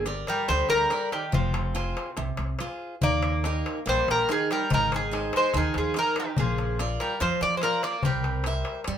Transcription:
0.00 0.23 G1 loud
0.06 0.40 G4 medium
0.06 0.40 A#4 medium
0.06 0.41 D5 soft
0.06 darbuka tek medium
0.27 0.48 G3 medium
0.27 0.48 A#4 medium
0.27 darbuka tek medium
0.38 darbuka tek soft
0.48 0.64 D2 medium
0.48 0.90 D3 medium
0.48 0.69 G3 medium
0.48 0.68 C5 loud
0.48 darbuka tek medium
0.69 0.84 D2 medium
0.69 1.10 G3 medium
0.69 1.09 A#4 loud
0.69 darbuka tek medium
0.90 1.25 G4 medium
0.90 1.25 A#4 soft
0.90 1.25 D5 medium
0.90 darbuka tek medium
1.01 darbuka tek soft
1.12 1.32 D#3 medium
1.12 1.32 G4 medium
1.12 darbuka tek medium
1.32 1.93 F1 loud
1.32 2.14 C3 medium
1.32 1.74 F3 medium
1.32 2.15 F4 medium
1.32 darbuka dum medium
1.54 darbuka tek medium
1.75 2.09 F4 medium
1.75 2.09 G#4 soft
1.75 2.09 C5 medium
1.75 darbuka tek medium
1.97 darbuka tek medium
2.06 darbuka tek soft
2.17 2.33 C2 loud
2.17 2.59 C3 medium
2.17 darbuka tek medium
2.37 2.54 C2 medium
2.37 darbuka tek medium
2.59 2.94 F4 medium
2.59 2.94 G#4 soft
2.59 2.94 C5 soft
2.59 darbuka tek medium
2.70 darbuka tek soft
3.01 3.61 D#2 loud
3.01 3.43 D#3 medium
3.01 3.83 A#3 medium
3.01 3.83 D5 medium
3.01 darbuka dum medium
3.23 darbuka tek medium
3.44 3.79 D#4 soft
3.44 3.78 G4 soft
3.44 3.79 A#4 medium
3.44 darbuka tek medium
3.66 darbuka tek medium
3.77 darbuka tek soft
3.86 4.01 A#1 medium
3.86 4.07 G3 medium
3.86 4.27 A#3 medium
3.86 4.08 C5 loud
3.86 darbuka tek medium
4.08 4.22 A#1 medium
4.08 4.29 G3 medium
4.08 4.29 A#4 loud
4.08 darbuka tek medium
4.29 4.49 D#3 medium
4.29 4.62 D#4 medium
4.29 4.63 G4 soft
4.29 4.50 G#4 loud
4.29 4.63 A#4 medium
4.29 darbuka tek medium
4.41 darbuka tek soft
4.51 4.70 G3 medium
4.51 4.71 A#4 medium
4.51 darbuka tek medium
4.70 5.30 G#1 loud
4.70 4.92 D#3 medium
4.70 5.11 G#3 medium
4.70 4.92 A#4 medium
4.70 darbuka dum loud
4.92 5.32 D#3 medium
4.92 5.33 G#4 medium
4.92 darbuka tek medium
5.03 darbuka tek soft
5.11 5.46 D#4 medium
5.11 5.46 G#4 soft
5.11 5.46 C5 medium
5.11 darbuka tek medium
5.33 5.54 G#3 medium
5.33 darbuka tek medium
5.37 5.55 C5 medium
5.43 darbuka tek soft
5.54 5.69 D#2 medium
5.54 5.95 D#3 medium
5.54 5.76 D#3 medium
5.54 5.75 G#4 medium
5.54 darbuka tek medium
5.54 darbuka dum medium
5.74 5.90 D#2 medium
5.74 5.96 F3 medium
5.74 5.96 G#4 medium
5.74 darbuka tek medium
5.84 darbuka tek soft
5.94 6.30 D#4 medium
5.94 6.30 G#4 soft
5.94 6.30 C5 medium
5.94 darbuka tek medium
5.99 6.17 D#3 medium
5.99 6.17 A#4 medium
6.05 darbuka tek soft
6.16 6.38 D#3 medium
6.16 darbuka tek medium
6.20 6.39 G4 medium
6.37 6.96 A#1 loud
6.37 6.78 F3 medium
6.37 6.78 A#3 medium
6.37 6.77 G#4 medium
6.37 darbuka dum medium
6.58 darbuka tek medium
6.79 7.13 F4 medium
6.79 7.13 A#4 soft
6.79 7.13 D5 medium
6.79 darbuka tek medium
7.00 7.20 G3 medium
7.00 7.20 A#4 medium
7.00 darbuka tek medium
7.11 darbuka tek soft
7.20 7.35 F2 medium
7.20 7.40 F3 medium
7.20 7.61 F3 medium
7.20 7.41 C5 loud
7.20 darbuka tek medium
7.41 7.56 F2 medium
7.41 7.56 A#3 medium
7.41 7.57 D5 loud
7.41 darbuka tek medium
7.57 7.62 G#3 medium
7.57 7.62 C5 medium
7.62 7.83 F3 medium
7.62 7.96 F4 soft
7.62 7.82 A#4 loud
7.62 7.96 A#4 soft
7.62 7.97 D5 medium
7.62 darbuka tek medium
7.73 darbuka tek soft
7.83 8.03 A#3 medium
7.83 8.03 D5 medium
7.83 darbuka tek medium
8.03 8.61 C2 loud
8.03 8.84 G3 medium
8.03 8.45 C4 medium
8.03 8.83 A#4 medium
8.03 darbuka dum medium
8.24 darbuka tek medium
8.44 8.79 G4 medium
8.44 8.79 C5 soft
8.44 8.80 E5 medium
8.44 darbuka tek medium
8.65 darbuka tek medium
8.75 darbuka tek soft
8.84 8.98 G2 medium
8.84 8.98 G3 medium
8.84 darbuka tek medium

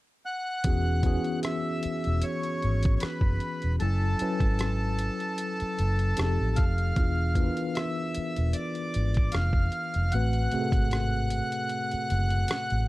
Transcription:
0.26 1.40 F#5 loud
0.64 1.17 E1 loud
0.64 0.98 E3 medium
0.64 0.98 B3 medium
0.64 0.98 C#4 medium
0.64 0.99 F#4 medium
0.64 0.99 G#4 medium
0.64 kick loud
0.64 closed hi-hat medium
1.03 2.35 E3 medium
1.03 2.36 B3 medium
1.03 2.36 C#4 medium
1.03 2.36 F#4 medium
1.03 2.37 G#4 medium
1.03 kick medium
1.03 closed hi-hat medium
1.24 closed hi-hat soft
1.43 2.25 E5 loud
1.43 cross-stick medium
1.43 closed hi-hat medium
1.83 muted fingered electric bass stroke soft
1.83 closed hi-hat medium
2.04 2.21 E1 medium
2.04 closed hi-hat soft
2.22 2.95 C#5 medium
2.22 closed hi-hat medium
2.43 closed hi-hat soft
2.62 2.96 G#1 medium
2.62 closed hi-hat soft
2.83 kick medium
2.83 closed hi-hat soft
2.96 3.02 C#5 medium
3.00 3.76 B4 medium
3.00 muted fingered electric bass stroke soft
3.00 cross-stick medium
3.00 closed hi-hat medium
3.21 3.37 F#1 medium
3.21 kick medium
3.40 closed hi-hat medium
3.62 3.78 E1 medium
3.62 closed hi-hat soft
3.80 4.14 F#1 medium
3.80 4.14 F#3 medium
3.80 4.14 C#4 medium
3.80 4.14 E4 medium
3.80 6.65 A4 loud
3.80 4.15 A4 medium
3.80 4.14 G#5 medium
3.80 closed hi-hat medium
4.19 5.52 F#3 medium
4.19 5.52 C#4 medium
4.19 5.52 E4 medium
4.19 5.53 B4 medium
4.19 5.52 G#5 medium
4.19 muted fingered electric bass stroke soft
4.19 closed hi-hat medium
4.40 5.08 G#1 medium
4.40 kick medium
4.40 closed hi-hat soft
4.59 cross-stick medium
4.59 closed hi-hat medium
4.99 closed hi-hat medium
5.20 closed hi-hat soft
5.38 closed hi-hat medium
5.60 muted fingered electric bass stroke soft
5.60 closed hi-hat soft
5.79 6.12 F#1 medium
5.79 closed hi-hat soft
5.99 closed hi-hat soft
6.17 6.36 F1 medium
6.17 6.83 F3 medium
6.17 6.84 C4 medium
6.17 6.84 D#4 medium
6.17 6.84 G4 medium
6.17 6.25 G#4 medium
6.17 cross-stick medium
6.17 closed hi-hat medium
6.26 6.88 A4 medium
6.41 6.55 A1 medium
6.56 6.91 F1 medium
6.56 7.78 F5 loud
6.56 kick medium
6.56 closed hi-hat medium
6.78 closed hi-hat soft
6.96 7.48 E1 loud
6.96 7.29 E3 medium
6.96 7.30 B3 medium
6.96 7.30 D4 medium
6.96 7.30 F4 soft
6.96 7.30 G#4 medium
6.96 kick loud
6.96 closed hi-hat medium
7.35 8.67 E3 medium
7.35 8.67 B3 medium
7.35 8.67 D4 medium
7.35 8.68 F4 medium
7.35 7.44 A#4 medium
7.35 kick medium
7.35 closed hi-hat medium
7.44 8.71 B4 medium
7.57 closed hi-hat soft
7.75 8.56 E5 loud
7.75 cross-stick medium
7.75 closed hi-hat medium
8.15 muted fingered electric bass stroke soft
8.15 closed hi-hat medium
8.36 8.52 E1 medium
8.36 closed hi-hat soft
8.53 9.35 D5 medium
8.53 closed hi-hat medium
8.75 closed hi-hat soft
8.94 9.28 G#1 medium
8.94 closed hi-hat soft
9.14 kick medium
9.14 closed hi-hat soft
9.32 9.67 F1 loud
9.32 10.14 F5 medium
9.32 cross-stick medium
9.32 closed hi-hat medium
9.53 kick medium
9.72 closed hi-hat medium
9.94 10.10 F1 medium
9.94 closed hi-hat soft
10.12 10.46 A1 loud
10.12 10.45 A2 medium
10.12 10.46 A3 medium
10.12 10.46 C4 medium
10.12 10.46 F#4 medium
10.12 10.47 B4 medium
10.12 12.86 F#5 loud
10.12 closed hi-hat medium
10.33 closed hi-hat soft
10.52 11.83 C3 medium
10.52 11.84 A3 medium
10.52 11.84 C4 medium
10.52 11.84 F#4 medium
10.52 10.60 G#4 medium
10.52 muted fingered electric bass stroke soft
10.52 closed hi-hat medium
10.61 11.88 A4 medium
10.72 11.40 G#1 medium
10.72 kick medium
10.72 closed hi-hat soft
10.91 cross-stick medium
10.91 closed hi-hat medium
11.30 closed hi-hat medium
11.52 closed hi-hat soft
11.69 closed hi-hat medium
11.91 muted fingered electric bass stroke soft
11.91 closed hi-hat soft
12.10 12.44 F#1 medium
12.10 closed hi-hat soft
12.30 closed hi-hat soft
12.48 cross-stick loud
12.48 closed hi-hat medium
12.70 12.88 A1 medium
12.70 closed hi-hat soft

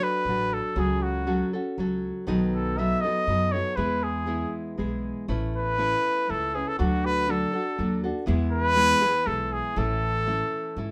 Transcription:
0.00 0.28 F#3 medium
0.00 0.27 D4 medium
0.00 0.29 F#4 medium
0.00 0.29 A4 medium
0.00 0.55 B4 loud
0.25 0.59 A1 medium
0.25 0.76 F#3 medium
0.25 0.76 D4 soft
0.25 0.76 F#4 soft
0.30 0.77 A4 medium
0.54 0.81 A4 medium
0.76 1.42 C#2 loud
0.76 1.27 C#3 medium
0.76 1.26 F#3 medium
0.76 1.26 C#4 medium
0.76 1.27 F#4 medium
0.76 1.05 G#4 medium
0.76 1.27 A4 medium
1.03 1.54 F#4 medium
1.27 1.53 F#3 medium
1.27 1.53 C#4 medium
1.27 1.54 F#4 medium
1.27 1.52 A4 medium
1.53 1.78 C#4 soft
1.53 1.78 F#4 soft
1.53 1.78 A4 medium
1.78 2.10 C#2 medium
1.78 2.26 F#3 medium
1.78 2.27 C#4 medium
1.78 2.28 F#4 medium
1.78 2.26 A4 medium
2.27 2.93 B1 medium
2.27 2.77 B2 medium
2.27 2.77 D#3 medium
2.27 2.77 F#3 medium
2.27 2.78 B3 medium
2.27 2.78 D#4 medium
2.27 2.78 A4 medium
2.54 2.80 A4 medium
2.78 3.04 F#3 medium
2.78 3.04 B3 medium
2.78 3.03 D#4 medium
2.78 3.03 A4 medium
2.78 3.03 E5 medium
3.01 3.28 D#4 soft
3.01 3.28 A4 medium
3.01 3.54 D#5 loud
3.05 3.27 F#3 soft
3.05 3.27 B3 soft
3.27 3.60 F#2 medium
3.27 3.54 F#3 medium
3.27 3.54 B3 medium
3.27 3.53 D#4 medium
3.27 3.52 A4 medium
3.52 3.77 F#3 soft
3.52 3.76 B3 soft
3.52 3.78 D#4 soft
3.52 3.78 A4 soft
3.52 3.78 C#5 medium
3.77 4.43 E2 loud
3.77 6.78 E3 medium
3.77 4.25 G#3 medium
3.77 4.27 B3 medium
3.77 4.27 E4 medium
3.77 4.27 G#4 medium
3.77 4.05 B4 medium
4.04 4.54 G#4 medium
4.26 4.76 G#3 medium
4.26 4.78 B3 medium
4.26 4.79 E4 medium
4.26 4.78 G#4 medium
4.78 5.12 B1 medium
4.78 5.28 G#3 medium
4.78 5.28 B3 medium
4.78 5.28 E4 medium
4.78 5.29 G#4 medium
5.28 5.94 A1 medium
5.28 5.78 A3 medium
5.28 5.77 C#4 medium
5.28 5.78 E4 medium
5.28 5.78 B4 medium
5.57 6.32 B4 loud
5.78 6.28 A3 medium
5.78 6.28 C#4 medium
5.78 6.28 E4 medium
5.78 6.29 B4 medium
6.28 6.62 C#2 medium
6.28 6.55 A3 medium
6.28 6.55 C#4 medium
6.28 6.54 E4 medium
6.28 6.56 A4 medium
6.28 6.53 B4 medium
6.55 6.78 C#4 soft
6.55 6.78 E4 soft
6.55 6.70 G#4 medium
6.55 6.79 B4 soft
6.68 6.79 A4 medium
6.79 7.44 D2 loud
6.79 7.29 D3 medium
6.79 7.27 F#3 medium
6.79 7.27 D4 medium
6.79 7.28 F#4 medium
6.79 7.07 F#4 medium
6.79 7.28 A4 medium
7.05 7.32 B4 loud
7.28 7.54 F#3 medium
7.28 7.54 D4 medium
7.28 7.53 F#4 medium
7.28 7.52 A4 medium
7.28 8.05 A4 medium
7.53 7.77 D4 soft
7.53 7.79 F#4 soft
7.53 7.78 A4 medium
7.78 8.11 D#2 medium
7.78 8.04 F#3 medium
7.78 8.04 D4 medium
7.78 8.04 F#4 medium
7.78 8.02 A4 medium
8.04 8.26 D4 soft
8.04 8.27 F#4 soft
8.04 8.27 A4 medium
8.26 8.92 E2 loud
8.26 9.76 E3 medium
8.26 8.75 G#3 medium
8.26 8.75 B3 medium
8.26 8.76 E4 medium
8.26 8.76 G#4 medium
8.52 9.29 B4 loud
8.76 9.02 G#3 medium
8.76 9.02 B3 medium
8.76 9.01 E4 medium
8.76 9.00 G#4 medium
9.01 9.25 B3 soft
9.01 9.26 E4 soft
9.01 9.26 G#4 medium
9.25 9.60 B1 medium
9.25 9.76 G#3 soft
9.25 9.76 B3 medium
9.25 9.77 E4 medium
9.25 9.77 G#4 medium
9.25 9.54 A4 loud
9.53 9.80 G#4 medium
9.76 10.42 A1 loud
9.76 10.27 A2 medium
9.76 10.91 E3 medium
9.76 10.25 A3 medium
9.76 10.27 C#4 medium
9.76 10.28 E4 medium
9.76 10.27 A4 medium
9.76 10.91 A4 loud
10.27 10.77 A3 medium
10.27 10.77 C#4 medium
10.27 10.77 E4 medium
10.27 10.78 A4 medium
10.77 10.91 G#2 medium
10.77 10.91 C#4 medium
10.77 10.91 E4 medium
10.77 10.91 A4 medium

